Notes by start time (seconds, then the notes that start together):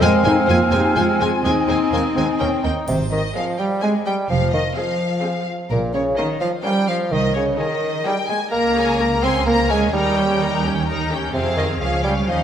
0.00 F2 G#3 C4 F5 G#5
0.24 F2 G#3 C4 D#4 C5 G#5
0.47 F2 G#3 A#3 C4 F4 C5 G#5
0.71 F2 G#3 D#4 G4 C5 G#5
0.95 F2 G#3 C4 F4 C5 G#5
1.19 F2 G#3 F4 G#4 C5 G#5
1.43 D#2 G#3 C4 D#4 C5 D#5 G#5
1.67 D#2 G#3 C5 G#5
1.92 D#2 G#3 A#3 C5 G#5
2.16 D#2 G#3 C4 C5 G#5
2.40 D#2 A#3 C#4 A#4 G5
2.63 D#2 A#3 D#4 A#4 G5
2.87 G#1 C3 C5, triangle
3.11 D#3 D#5
3.34 F3 C4 G#4 D#5 F5
3.58 G3 G5
3.81 G#3 C4 G#4 D#5 G#5
4.06 G3 G5
4.29 F1 F3 F5
4.53 D#3 D#5
4.76 F3 C4 G#4 F5
5.22 C4 G#4 F5
5.70 A#1 A#2 A#4
5.94 C#3 C#5
6.17 D#3 C#4 A#4 D#5 F5
6.41 F3 F5
6.64 G3 C#4 A#4 F5 G5
6.88 F3 F5
7.11 C2 D#3 D#5
7.34 C#3 C#5
7.58 D#3 D#4 G#4 D#5 G#5
8.04 G3 D#4 G#4 G5 G#5
8.28 G#3 G#5
8.51 C#2 A#3 A#4 A#5
8.76 C#4 G#4 G#5
8.99 A#3 A#4 A#5
9.23 C4 C#4 G#4 G#5 C6
9.46 A#3 A#4 A#5
9.70 G#3 C#4 G#4 G#5
9.92 D#2 G3 D#4 A#4 G5 A#5
10.17 C#4 G4 G5
10.40 D#4 A#4 A#5
10.64 C#4 G4 G5
10.87 D#4 A#4 A#5
11.12 C#4 G4 G5
11.33 F2 C3 C4 G#4 C5 F5
11.56 D#3 D#5
11.80 C#2 F3 C#4 G#4 F5
12.04 G3 G5
12.27 D#2 F3 C#4 D#4 D#5 F5